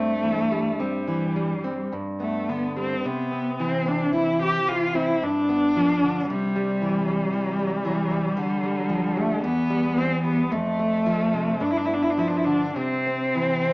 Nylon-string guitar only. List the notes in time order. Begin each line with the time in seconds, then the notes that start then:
Already playing: G2 C4
0.23 E3
0.51 G3
0.80 C4
1.08 E3
1.36 G3
1.64 C4
1.93 G2
2.20 B3
2.49 D3
2.77 G3
3.06 C3
3.32 C4
3.60 E3
3.86 C4
4.13 E3
4.40 C4
4.68 E3
4.95 C4
5.22 G2
5.49 B3
5.77 F3
6.03 D3
6.30 C3
6.56 G3
6.82 E3
7.08 G3
7.34 E3
7.59 G3
7.85 E3
8.11 G3
8.37 D3
8.63 G3
8.90 F3
9.17 G3
9.44 E2
9.70 G3
9.97 E3
10.24 G3
10.52 F2
10.79 A3
11.06 F3
11.34 C3
11.60 G2
11.88 B3
12.18 F3
12.46 D3
12.76 C3
13.07 C4
13.35 E3
13.65 C4